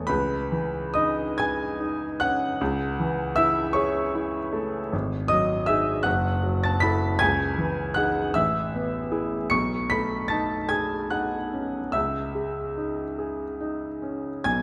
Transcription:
0.00 0.12 E3 medium
0.00 0.12 A3 medium
0.00 0.12 E4 medium
0.00 0.12 G#4 medium
0.00 0.12 C#5 medium
0.00 0.12 D#5 medium
0.00 0.12 C#6 medium
0.00 0.12 D#6 loud
0.07 2.56 C#2 medium
0.07 0.91 B4 medium
0.07 0.95 B5 medium
0.52 1.23 E3 medium
0.94 1.65 D#4 medium
0.94 1.36 D#5 medium
0.94 1.38 D#6 medium
1.38 2.05 G#4 medium
1.38 2.17 G#5 medium
1.38 2.20 G#6 medium
1.80 2.44 D#4 medium
2.20 2.61 C#4 medium
2.20 3.34 F#5 medium
2.20 3.37 F#6 loud
2.61 4.90 C#2 medium
3.00 3.61 E3 medium
3.36 4.00 E4 medium
3.36 3.73 E5 medium
3.36 3.75 E6 loud
3.73 4.39 G#4 medium
3.73 4.88 C#5 medium
3.73 4.92 C#6 medium
4.15 4.78 E4 medium
4.53 4.92 A3 medium
4.93 6.02 G#1 medium
5.28 5.90 F#3 medium
5.28 5.65 D#5 medium
5.28 5.67 D#6 loud
5.66 6.02 D#4 medium
5.66 6.02 G#4 medium
5.66 6.02 E5 medium
5.66 6.05 E6 medium
6.03 7.18 F#1 medium
6.03 6.59 F#5 medium
6.03 6.62 F#6 loud
6.44 7.06 F#3 medium
6.64 6.83 A5 medium
6.64 6.83 A6 medium
6.80 7.18 E4 medium
6.80 7.18 A4 medium
6.80 7.19 B5 medium
6.80 7.20 B6 loud
7.19 8.32 C#2 medium
7.19 7.93 G#5 medium
7.19 7.96 G#6 loud
7.58 8.19 E3 medium
7.94 8.31 D#4 soft
7.94 8.32 G#4 medium
7.94 8.32 F#5 medium
7.94 8.34 F#6 loud
8.34 9.48 A1 medium
8.34 9.47 E5 medium
8.34 9.51 E6 loud
8.74 9.36 B3 soft
9.12 9.47 E4 medium
9.12 9.47 G#4 medium
9.50 11.90 B1 medium
9.50 9.88 C#6 medium
9.50 9.90 C#7 loud
9.90 10.56 A3 medium
9.90 10.29 B5 medium
9.90 10.31 B6 loud
10.28 10.96 D#4 medium
10.28 10.68 A5 medium
10.28 10.70 A6 medium
10.69 11.36 G#4 soft
10.69 11.08 G#5 medium
10.69 11.11 G#6 medium
11.10 11.78 D#4 soft
11.10 11.90 F#5 medium
11.10 11.93 F#6 medium
11.53 11.94 C#4 soft
11.92 14.41 C#2 medium
11.92 14.40 E5 medium
11.92 14.44 E6 medium
12.35 13.02 G#3 soft
12.77 13.44 D#4 soft
13.19 13.85 G#4 soft
13.60 14.28 D#4 soft
14.02 14.45 C#4 soft
14.44 14.62 B1 medium
14.44 14.62 G#5 medium
14.44 14.62 G#6 loud

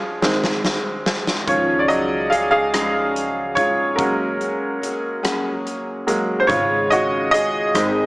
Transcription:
0.00 0.17 F3 soft
0.00 0.18 G#3 soft
0.00 0.18 C#4 soft
0.00 0.18 G#4 medium
0.00 0.18 F5 medium
0.21 1.43 D#3 soft
0.21 1.44 G#3 soft
0.21 1.44 C4 soft
0.21 snare medium
0.44 snare medium
0.65 snare medium
1.06 snare medium
1.27 snare medium
1.47 3.98 C#2 medium
1.47 2.31 C#3 medium
1.47 2.03 D#3 soft
1.47 2.31 F3 medium
1.47 2.03 F3 soft
1.47 2.31 G#3 medium
1.47 2.03 C#4 soft
1.47 2.32 C#4 medium
1.47 2.32 D#4 medium
1.47 1.80 F4 medium
1.47 2.33 G#4 medium
1.47 1.84 C#5 medium
1.47 kick medium
1.47 closed hi-hat medium
1.79 1.88 D5 medium
1.88 1.98 F#3 medium
1.88 1.98 D#5 medium
1.88 closed hi-hat soft
2.30 2.73 G#3 soft
2.30 2.73 C#4 soft
2.30 2.72 D#4 soft
2.30 2.50 G#4 medium
2.30 2.72 G#4 medium
2.30 2.49 F5 medium
2.30 closed hi-hat medium
2.51 3.52 G#4 medium
2.51 3.59 F5 medium
2.73 3.57 C#3 soft
2.73 3.57 F3 soft
2.73 3.58 G#3 soft
2.73 3.58 C#4 medium
2.73 3.56 D#4 soft
2.73 3.56 G#4 medium
2.73 cross-stick medium
2.73 closed hi-hat medium
3.16 closed hi-hat soft
3.55 3.99 G#3 soft
3.55 3.98 C#4 soft
3.55 3.99 D#4 soft
3.55 3.95 F4 medium
3.55 3.98 G#4 soft
3.55 3.99 C#5 medium
3.55 kick medium
3.55 closed hi-hat medium
3.96 6.45 F#1 medium
3.96 5.19 F#3 soft
3.96 4.82 F#3 medium
3.96 5.19 G#3 soft
3.96 5.20 A#3 soft
3.96 4.81 A#3 medium
3.96 5.20 C#4 soft
3.96 4.82 C#4 medium
3.96 4.82 F#4 medium
3.96 5.19 A#4 medium
3.96 kick medium
3.96 closed hi-hat medium
4.00 4.84 G#4 medium
4.41 closed hi-hat soft
4.82 5.23 A#3 soft
4.82 5.22 C#4 soft
4.82 5.22 F#4 medium
4.82 5.22 G#4 medium
4.82 closed hi-hat medium
5.23 6.08 F#3 medium
5.23 6.08 A#3 medium
5.23 6.07 C#4 medium
5.23 6.07 F#4 medium
5.23 6.07 G#4 medium
5.23 cross-stick medium
5.23 closed hi-hat medium
5.66 closed hi-hat soft
6.07 6.45 F#3 soft
6.07 6.45 G#3 soft
6.07 6.45 A#3 soft
6.07 6.48 C#4 soft
6.07 6.50 F#4 soft
6.07 6.49 G#4 soft
6.07 closed hi-hat medium
6.40 6.48 C5 medium
6.47 7.71 G#1 medium
6.47 7.33 G#2 medium
6.47 7.70 C#3 soft
6.47 7.33 C#3 medium
6.47 7.71 G#3 soft
6.47 7.33 G#3 medium
6.47 7.71 C#4 soft
6.47 7.33 C#4 medium
6.47 6.88 F4 medium
6.47 7.33 F4 medium
6.47 7.35 G#4 medium
6.47 6.87 C#5 medium
6.47 kick medium
6.47 closed hi-hat medium
6.90 7.31 F#4 medium
6.90 7.30 D#5 medium
6.90 closed hi-hat soft
7.31 7.75 G#3 medium
7.31 7.75 C#4 soft
7.31 7.75 F4 medium
7.31 8.06 G#4 medium
7.31 8.06 D#5 loud
7.31 closed hi-hat medium
7.35 7.74 G#4 medium
7.74 8.06 G#1 medium
7.74 8.06 G#2 medium
7.74 8.06 D#3 soft
7.74 8.06 G#3 soft
7.74 8.06 G#3 medium
7.74 8.06 C4 medium
7.74 8.06 C4 soft
7.74 8.06 D#4 medium
7.74 8.06 G#4 medium
7.74 cross-stick medium
7.74 closed hi-hat medium

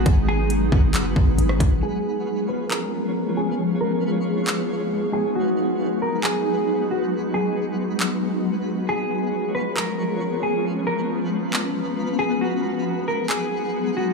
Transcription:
0.00 1.79 F#3 medium
0.00 1.79 G#3 medium
0.00 1.78 B3 medium
0.00 1.79 D#4 medium
0.00 1.79 F#4 medium
0.00 1.79 G#4 medium
0.00 1.79 B4 medium
0.06 0.70 G#1 loud
0.06 kick loud
0.06 closed hi-hat medium
0.28 0.49 G#4 medium
0.50 closed hi-hat medium
0.72 0.96 G#1 loud
0.72 kick medium
0.94 1.15 F#1 loud
0.94 clap loud
0.94 closed hi-hat medium
1.16 1.37 G#1 loud
1.16 kick loud
1.38 1.59 G#1 loud
1.38 closed hi-hat medium
1.49 cross-stick medium
1.60 1.82 G#1 loud
1.60 kick medium
1.60 closed hi-hat medium
1.83 5.32 F3 medium
1.83 12.37 G#3 medium
1.83 8.85 B3 medium
1.83 5.32 B3 medium
1.83 3.57 C#4 medium
1.83 5.32 F4 medium
1.83 5.32 G#4 medium
1.83 2.45 G#4 medium
1.83 5.32 C#5 medium
2.49 2.69 B4 medium
2.70 3.32 A#4 medium
2.70 clap loud
3.37 3.58 G#4 medium
3.59 8.84 D#4 medium
3.81 4.02 A#4 medium
4.47 clap loud
5.13 5.34 G#4 medium
5.35 8.85 F#3 medium
5.35 8.85 G#3 medium
5.35 8.85 F#4 medium
5.35 5.98 F#4 loud
5.35 7.10 G#4 medium
5.35 8.85 B4 medium
6.02 6.23 A#4 medium
6.23 6.85 G#4 medium
6.23 clap loud
6.91 7.11 F#4 medium
7.12 8.87 F#4 medium
7.34 7.55 G#4 medium
8.00 clap loud
8.88 12.38 F3 medium
8.88 12.38 B3 medium
8.88 14.13 B3 medium
8.88 12.38 C#4 medium
8.88 12.38 F4 medium
8.88 10.63 G#4 medium
8.88 9.51 G#4 medium
8.88 10.63 C#5 medium
9.55 9.75 B4 medium
9.76 10.38 A#4 medium
9.76 clap loud
10.43 10.64 G#4 medium
10.65 14.13 B4 medium
10.65 12.39 A#5 medium
10.87 11.08 A#4 medium
11.53 clap loud
12.19 12.40 G#4 medium
12.41 14.13 F#3 medium
12.41 14.13 G#3 medium
12.41 14.13 D#4 medium
12.41 14.13 F#4 medium
12.41 13.03 F#4 loud
12.41 14.13 G#4 medium
13.08 13.28 A#4 medium
13.29 13.91 G#4 medium
13.29 clap loud
13.97 14.13 F#4 medium

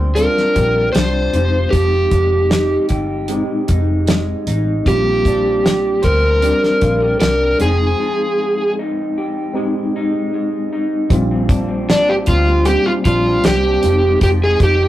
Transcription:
0.00 0.24 D2 medium
0.00 0.16 G3 medium
0.00 1.42 A#3 medium
0.00 0.17 C4 medium
0.00 0.14 D4 medium
0.00 0.18 D4 medium
0.00 0.19 F4 medium
0.00 0.55 G4 medium
0.00 3.28 C5 medium
0.15 1.23 G3 medium
0.15 1.24 C4 medium
0.15 0.94 D4 medium
0.15 1.24 D4 medium
0.15 1.25 F4 medium
0.15 0.92 A#4 medium
0.15 closed hi-hat medium
0.37 snare soft
0.55 0.87 A#1 loud
0.55 1.75 G4 medium
0.55 kick medium
0.55 closed hi-hat medium
0.92 1.26 C2 medium
0.92 1.42 D4 medium
0.92 1.74 C5 medium
0.92 snare loud
0.92 closed hi-hat medium
1.33 1.65 F1 medium
1.33 1.71 F3 medium
1.33 2.58 G#3 medium
1.33 2.59 C4 medium
1.33 2.59 D#4 medium
1.33 2.59 G4 medium
1.33 closed hi-hat medium
1.71 2.04 F1 medium
1.71 5.22 F3 medium
1.71 2.85 G4 medium
1.71 kick medium
1.71 closed hi-hat medium
2.11 2.74 F1 medium
2.11 3.27 G#3 soft
2.11 kick medium
2.11 closed hi-hat medium
2.50 3.67 D#4 medium
2.50 snare loud
2.50 closed hi-hat medium
2.89 3.37 G1 medium
2.89 5.64 G4 medium
2.89 kick medium
2.89 closed hi-hat medium
3.28 4.06 G#3 medium
3.28 4.36 G#3 medium
3.28 4.36 C4 medium
3.28 4.37 D#4 medium
3.28 4.37 G4 medium
3.28 closed hi-hat medium
3.68 4.31 F1 medium
3.68 4.46 D#4 medium
3.68 kick medium
3.68 closed hi-hat medium
4.07 4.86 G#3 medium
4.07 snare loud
4.07 closed hi-hat medium
4.47 4.78 A1 medium
4.47 4.94 D#4 medium
4.47 closed hi-hat medium
4.85 5.99 A#1 loud
4.85 5.92 G3 medium
4.85 7.67 A#3 medium
4.85 5.93 C4 medium
4.85 5.93 D4 medium
4.85 5.94 F4 medium
4.85 6.07 G4 medium
4.85 kick medium
4.85 closed hi-hat medium
5.25 6.41 D4 soft
5.25 kick medium
5.25 closed hi-hat medium
5.64 6.82 G4 medium
5.64 snare loud
5.64 closed hi-hat medium
6.02 6.50 D2 medium
6.02 7.19 A#4 loud
6.02 9.52 C5 medium
6.02 kick medium
6.02 closed hi-hat medium
6.42 7.49 G3 medium
6.42 7.49 C4 medium
6.42 7.20 D4 medium
6.42 7.49 D4 medium
6.42 7.50 G4 medium
6.42 closed hi-hat medium
6.63 snare soft
6.81 7.13 A#1 loud
6.81 7.02 F4 medium
6.81 kick medium
6.81 closed hi-hat medium
7.02 7.68 G4 soft
7.20 7.52 C2 medium
7.20 7.68 D4 medium
7.20 7.56 A#4 loud
7.20 snare loud
7.20 closed hi-hat medium
7.59 7.91 F1 loud
7.59 7.99 F3 medium
7.59 8.84 G#3 medium
7.59 8.84 C4 medium
7.59 8.85 D#4 medium
7.59 8.73 G#4 medium
7.59 8.85 G5 medium
7.59 closed hi-hat medium
7.99 11.49 F3 medium
8.40 9.55 G#3 medium
8.79 9.95 D#4 medium
9.18 11.49 G4 medium
9.53 10.60 G#3 medium
9.53 10.33 G#3 medium
9.53 10.61 C4 medium
9.53 10.61 D#4 medium
9.53 10.62 G4 medium
9.96 10.71 D#4 medium
10.34 11.19 G#3 medium
10.73 11.19 D#4 medium
11.10 12.23 A#1 loud
11.10 12.65 A#2 medium
11.10 12.17 G3 medium
11.10 12.17 C4 medium
11.10 12.17 D4 medium
11.10 12.18 F4 medium
11.10 kick loud
11.10 closed hi-hat medium
11.31 11.68 C4 medium
11.49 12.07 D4 medium
11.49 kick loud
11.49 closed hi-hat medium
11.68 12.27 C4 medium
11.89 12.47 G3 medium
11.89 12.09 D4 medium
11.89 snare loud
11.89 closed hi-hat medium
12.08 13.05 D4 medium
12.08 12.14 G4 medium
12.26 12.74 D2 medium
12.26 12.86 C4 medium
12.26 12.67 F4 medium
12.26 kick medium
12.26 closed hi-hat medium
12.47 13.47 G3 medium
12.65 13.91 A#2 medium
12.65 13.73 G3 medium
12.65 13.73 C4 medium
12.65 13.73 D4 medium
12.65 12.86 G4 medium
12.65 13.73 G4 medium
12.65 closed hi-hat medium
12.86 13.25 C4 medium
12.86 12.91 F4 medium
13.05 13.36 A#1 medium
13.05 13.64 D4 medium
13.05 13.46 F4 medium
13.05 kick medium
13.05 closed hi-hat medium
13.25 14.44 C4 medium
13.44 13.75 C2 medium
13.44 14.04 G3 medium
13.44 14.18 G4 medium
13.44 snare loud
13.44 closed hi-hat loud
13.66 13.92 D4 medium
13.81 14.14 F1 loud
13.81 14.24 F3 medium
13.81 14.88 G#3 medium
13.81 14.88 C4 medium
13.81 14.88 D#4 medium
13.81 14.88 G4 medium
13.81 closed hi-hat medium
14.04 14.88 G#3 medium
14.21 14.53 F1 medium
14.21 14.88 F3 medium
14.21 14.28 G4 medium
14.21 kick medium
14.21 closed hi-hat medium
14.44 14.81 D#4 medium
14.44 14.62 G#4 medium
14.60 14.88 F1 medium
14.60 14.88 G4 medium
14.60 kick medium
14.60 closed hi-hat medium
14.82 14.88 D#4 medium

